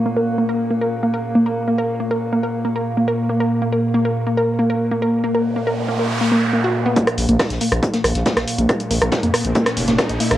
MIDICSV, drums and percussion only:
0, 0, Header, 1, 2, 480
1, 0, Start_track
1, 0, Tempo, 431655
1, 64, Time_signature, 4, 2, 24, 8
1, 11538, End_track
2, 0, Start_track
2, 0, Title_t, "Drums"
2, 7738, Note_on_c, 9, 42, 93
2, 7744, Note_off_c, 9, 42, 0
2, 7744, Note_on_c, 9, 42, 69
2, 7745, Note_on_c, 9, 36, 118
2, 7856, Note_off_c, 9, 36, 0
2, 7856, Note_off_c, 9, 42, 0
2, 7865, Note_on_c, 9, 37, 62
2, 7865, Note_on_c, 9, 42, 67
2, 7977, Note_off_c, 9, 37, 0
2, 7977, Note_off_c, 9, 42, 0
2, 7977, Note_on_c, 9, 42, 69
2, 7984, Note_on_c, 9, 46, 102
2, 8088, Note_off_c, 9, 42, 0
2, 8095, Note_off_c, 9, 46, 0
2, 8105, Note_on_c, 9, 42, 66
2, 8216, Note_off_c, 9, 42, 0
2, 8222, Note_on_c, 9, 38, 122
2, 8224, Note_on_c, 9, 36, 114
2, 8225, Note_on_c, 9, 37, 61
2, 8225, Note_on_c, 9, 42, 68
2, 8226, Note_on_c, 9, 46, 73
2, 8333, Note_off_c, 9, 38, 0
2, 8336, Note_off_c, 9, 36, 0
2, 8336, Note_off_c, 9, 37, 0
2, 8336, Note_off_c, 9, 42, 0
2, 8337, Note_off_c, 9, 46, 0
2, 8345, Note_on_c, 9, 42, 66
2, 8352, Note_on_c, 9, 38, 39
2, 8456, Note_off_c, 9, 42, 0
2, 8458, Note_on_c, 9, 42, 62
2, 8464, Note_off_c, 9, 38, 0
2, 8464, Note_on_c, 9, 46, 103
2, 8569, Note_off_c, 9, 42, 0
2, 8575, Note_off_c, 9, 46, 0
2, 8585, Note_on_c, 9, 37, 61
2, 8585, Note_on_c, 9, 42, 67
2, 8697, Note_off_c, 9, 37, 0
2, 8697, Note_off_c, 9, 42, 0
2, 8704, Note_on_c, 9, 36, 114
2, 8705, Note_on_c, 9, 42, 97
2, 8815, Note_off_c, 9, 36, 0
2, 8816, Note_off_c, 9, 42, 0
2, 8825, Note_on_c, 9, 38, 53
2, 8825, Note_on_c, 9, 42, 67
2, 8936, Note_off_c, 9, 38, 0
2, 8936, Note_off_c, 9, 42, 0
2, 8944, Note_on_c, 9, 37, 61
2, 8944, Note_on_c, 9, 46, 100
2, 8946, Note_on_c, 9, 42, 73
2, 9055, Note_off_c, 9, 37, 0
2, 9055, Note_off_c, 9, 46, 0
2, 9057, Note_off_c, 9, 42, 0
2, 9062, Note_on_c, 9, 38, 35
2, 9065, Note_on_c, 9, 42, 70
2, 9173, Note_off_c, 9, 38, 0
2, 9176, Note_off_c, 9, 42, 0
2, 9177, Note_on_c, 9, 42, 91
2, 9184, Note_off_c, 9, 42, 0
2, 9184, Note_on_c, 9, 36, 115
2, 9184, Note_on_c, 9, 42, 66
2, 9187, Note_on_c, 9, 38, 118
2, 9295, Note_off_c, 9, 36, 0
2, 9295, Note_off_c, 9, 42, 0
2, 9298, Note_off_c, 9, 38, 0
2, 9305, Note_on_c, 9, 37, 60
2, 9305, Note_on_c, 9, 42, 67
2, 9307, Note_on_c, 9, 38, 56
2, 9416, Note_off_c, 9, 37, 0
2, 9416, Note_off_c, 9, 42, 0
2, 9418, Note_off_c, 9, 38, 0
2, 9424, Note_on_c, 9, 46, 107
2, 9431, Note_on_c, 9, 42, 72
2, 9535, Note_off_c, 9, 46, 0
2, 9542, Note_off_c, 9, 42, 0
2, 9545, Note_on_c, 9, 42, 66
2, 9656, Note_off_c, 9, 42, 0
2, 9662, Note_on_c, 9, 42, 87
2, 9663, Note_off_c, 9, 42, 0
2, 9663, Note_on_c, 9, 37, 62
2, 9663, Note_on_c, 9, 42, 68
2, 9664, Note_on_c, 9, 36, 119
2, 9774, Note_off_c, 9, 37, 0
2, 9774, Note_off_c, 9, 42, 0
2, 9775, Note_off_c, 9, 36, 0
2, 9785, Note_on_c, 9, 42, 67
2, 9786, Note_off_c, 9, 42, 0
2, 9786, Note_on_c, 9, 42, 42
2, 9897, Note_off_c, 9, 42, 0
2, 9901, Note_on_c, 9, 42, 71
2, 9903, Note_on_c, 9, 46, 109
2, 10012, Note_off_c, 9, 42, 0
2, 10015, Note_off_c, 9, 46, 0
2, 10025, Note_on_c, 9, 37, 61
2, 10025, Note_on_c, 9, 42, 69
2, 10137, Note_off_c, 9, 37, 0
2, 10137, Note_off_c, 9, 42, 0
2, 10137, Note_on_c, 9, 38, 117
2, 10144, Note_on_c, 9, 36, 121
2, 10144, Note_on_c, 9, 42, 70
2, 10147, Note_off_c, 9, 42, 0
2, 10147, Note_on_c, 9, 42, 84
2, 10248, Note_off_c, 9, 38, 0
2, 10255, Note_off_c, 9, 36, 0
2, 10258, Note_off_c, 9, 42, 0
2, 10265, Note_on_c, 9, 42, 66
2, 10376, Note_off_c, 9, 42, 0
2, 10384, Note_on_c, 9, 37, 63
2, 10384, Note_on_c, 9, 46, 107
2, 10390, Note_on_c, 9, 42, 70
2, 10495, Note_off_c, 9, 37, 0
2, 10495, Note_off_c, 9, 46, 0
2, 10501, Note_off_c, 9, 42, 0
2, 10505, Note_on_c, 9, 42, 67
2, 10615, Note_off_c, 9, 42, 0
2, 10615, Note_on_c, 9, 42, 91
2, 10623, Note_off_c, 9, 42, 0
2, 10623, Note_on_c, 9, 42, 70
2, 10624, Note_on_c, 9, 36, 119
2, 10735, Note_off_c, 9, 36, 0
2, 10735, Note_off_c, 9, 42, 0
2, 10740, Note_on_c, 9, 38, 55
2, 10745, Note_on_c, 9, 37, 61
2, 10745, Note_on_c, 9, 42, 68
2, 10852, Note_off_c, 9, 38, 0
2, 10856, Note_off_c, 9, 37, 0
2, 10856, Note_off_c, 9, 42, 0
2, 10862, Note_on_c, 9, 42, 66
2, 10863, Note_on_c, 9, 46, 103
2, 10864, Note_on_c, 9, 38, 45
2, 10973, Note_off_c, 9, 42, 0
2, 10974, Note_off_c, 9, 46, 0
2, 10975, Note_off_c, 9, 38, 0
2, 10982, Note_on_c, 9, 38, 59
2, 10985, Note_on_c, 9, 42, 67
2, 11094, Note_off_c, 9, 38, 0
2, 11096, Note_off_c, 9, 42, 0
2, 11102, Note_on_c, 9, 42, 84
2, 11103, Note_on_c, 9, 38, 108
2, 11104, Note_off_c, 9, 42, 0
2, 11104, Note_on_c, 9, 36, 124
2, 11104, Note_on_c, 9, 37, 60
2, 11104, Note_on_c, 9, 42, 67
2, 11215, Note_off_c, 9, 36, 0
2, 11215, Note_off_c, 9, 37, 0
2, 11215, Note_off_c, 9, 38, 0
2, 11215, Note_off_c, 9, 42, 0
2, 11225, Note_on_c, 9, 42, 66
2, 11336, Note_off_c, 9, 42, 0
2, 11341, Note_on_c, 9, 42, 68
2, 11344, Note_on_c, 9, 46, 106
2, 11452, Note_off_c, 9, 42, 0
2, 11455, Note_off_c, 9, 46, 0
2, 11464, Note_on_c, 9, 38, 43
2, 11465, Note_on_c, 9, 37, 62
2, 11465, Note_on_c, 9, 42, 69
2, 11538, Note_off_c, 9, 37, 0
2, 11538, Note_off_c, 9, 38, 0
2, 11538, Note_off_c, 9, 42, 0
2, 11538, End_track
0, 0, End_of_file